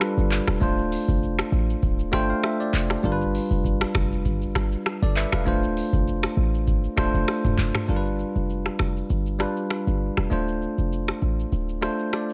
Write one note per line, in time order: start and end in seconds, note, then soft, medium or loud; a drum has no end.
0.00 0.63 G3 medium
0.00 0.61 D4 medium
0.00 0.62 F4 medium
0.00 0.63 A4 medium
0.00 0.63 B4 loud
0.00 finger snap medium
0.00 cross-stick loud
0.00 shaker medium
0.18 0.41 G1 medium
0.18 shaker medium
0.31 clap loud
0.47 0.58 E1 medium
0.47 finger snap medium
0.47 cross-stick loud
0.47 shaker medium
0.60 0.97 D1 loud
0.60 1.50 A3 medium
0.60 1.50 D4 medium
0.60 1.50 F4 medium
0.60 1.51 C5 medium
0.60 kick loud
0.60 shaker medium
0.79 shaker medium
0.92 open hi-hat medium
0.92 shaker medium
1.08 1.42 F1 loud
1.08 kick medium
1.08 shaker medium
1.23 shaker medium
1.39 finger snap medium
1.39 cross-stick loud
1.39 shaker medium
1.52 1.75 A1 medium
1.52 shaker medium
1.70 shaker medium
1.83 2.19 D1 loud
1.83 kick loud
1.83 shaker medium
1.99 shaker medium
2.12 2.79 A3 medium
2.12 2.80 D4 medium
2.12 2.80 F4 medium
2.12 2.80 C5 loud
2.12 2.29 G5 medium
2.12 finger snap medium
2.12 kick loud
2.12 cross-stick loud
2.12 shaker medium
2.30 2.43 F5 medium
2.30 shaker medium
2.43 2.59 E5 medium
2.43 finger snap medium
2.43 cross-stick medium
2.43 shaker medium
2.60 3.01 D5 medium
2.60 shaker medium
2.74 2.97 F1 medium
2.74 clap medium
2.90 finger snap medium
2.90 cross-stick loud
2.90 shaker medium
3.03 3.40 G1 loud
3.03 3.92 G3 medium
3.03 3.92 D4 medium
3.03 3.93 F4 medium
3.03 3.12 A#4 medium
3.03 kick loud
3.03 shaker medium
3.12 3.97 B4 loud
3.21 shaker medium
3.35 open hi-hat medium
3.35 shaker medium
3.51 3.84 F1 medium
3.51 shaker medium
3.65 kick medium
3.65 shaker medium
3.81 finger snap medium
3.81 cross-stick loud
3.81 shaker medium
3.94 4.27 F1 medium
3.94 finger snap medium
3.94 kick loud
3.94 cross-stick loud
3.94 shaker medium
4.12 shaker medium
4.25 4.61 G1 loud
4.25 kick loud
4.25 shaker medium
4.42 shaker medium
4.55 finger snap medium
4.55 kick loud
4.55 cross-stick loud
4.55 shaker medium
4.72 shaker medium
4.86 finger snap medium
4.86 cross-stick loud
4.86 shaker medium
5.03 5.26 G1 medium
5.03 5.16 A4 medium
5.03 5.16 D5 medium
5.03 shaker medium
5.16 5.32 B4 medium
5.16 5.32 E5 medium
5.16 clap loud
5.32 5.48 E1 medium
5.32 5.62 B4 medium
5.32 5.62 F5 medium
5.32 finger snap medium
5.32 cross-stick loud
5.32 shaker medium
5.45 5.82 D1 loud
5.45 6.34 A3 medium
5.45 6.35 D4 medium
5.45 6.35 F4 medium
5.45 6.36 C5 medium
5.45 kick loud
5.45 shaker medium
5.63 shaker medium
5.77 open hi-hat medium
5.77 shaker medium
5.93 6.27 F1 medium
5.93 kick loud
5.93 shaker medium
6.08 shaker medium
6.23 finger snap medium
6.23 cross-stick loud
6.23 shaker medium
6.37 6.83 A1 medium
6.55 shaker medium
6.67 kick loud
6.67 shaker medium
6.84 shaker medium
6.97 7.10 D1 loud
6.97 7.64 A3 medium
6.97 7.64 D4 medium
6.97 7.65 F4 medium
6.97 7.65 C5 loud
6.97 finger snap medium
6.97 kick loud
6.97 cross-stick loud
7.14 7.25 F1 medium
7.14 shaker medium
7.28 finger snap medium
7.28 cross-stick loud
7.28 shaker medium
7.45 7.55 E1 medium
7.45 mid tom medium
7.45 shaker medium
7.58 7.71 F1 medium
7.58 clap loud
7.58 mid tom medium
7.75 finger snap medium
7.75 cross-stick loud
7.75 mid tom loud
7.75 shaker medium
7.87 8.24 G1 loud
7.87 8.77 G3 medium
7.87 8.77 D4 medium
7.87 8.78 F4 medium
7.87 7.97 A#4 medium
7.87 shaker medium
7.96 8.81 B4 medium
8.06 shaker medium
8.19 shaker medium
8.36 8.69 F1 medium
8.36 shaker medium
8.50 shaker medium
8.66 finger snap medium
8.66 cross-stick medium
8.66 shaker medium
8.79 9.03 F1 medium
8.79 finger snap medium
8.79 cross-stick loud
8.79 shaker medium
8.97 shaker medium
9.10 9.46 G1 loud
9.10 shaker medium
9.26 shaker medium
9.39 10.06 G3 medium
9.39 10.07 D4 medium
9.39 10.07 F4 medium
9.39 10.08 B4 medium
9.39 finger snap medium
9.39 cross-stick loud
9.39 shaker medium
9.57 shaker medium
9.70 finger snap medium
9.70 cross-stick medium
9.70 shaker medium
9.87 10.10 G1 medium
9.87 shaker medium
10.17 10.28 E1 medium
10.17 finger snap medium
10.17 cross-stick loud
10.17 shaker medium
10.30 10.67 D1 loud
10.30 11.19 A3 medium
10.30 11.20 D4 medium
10.30 11.20 F4 medium
10.30 11.21 C5 medium
10.30 shaker medium
10.48 shaker medium
10.62 shaker medium
10.78 11.12 F1 loud
10.78 shaker medium
10.93 shaker medium
11.08 finger snap medium
11.08 cross-stick loud
11.08 shaker medium
11.21 11.45 A1 medium
11.21 shaker medium
11.40 shaker medium
11.52 11.88 D1 loud
11.52 shaker medium
11.69 shaker medium
11.81 12.33 A3 medium
11.81 12.33 D4 medium
11.81 12.33 F4 medium
11.81 12.33 C5 loud
11.81 finger snap medium
11.81 cross-stick loud
11.81 shaker medium
11.99 shaker medium
12.13 12.33 D5 medium
12.13 finger snap medium
12.13 cross-stick medium
12.13 shaker medium
12.30 shaker medium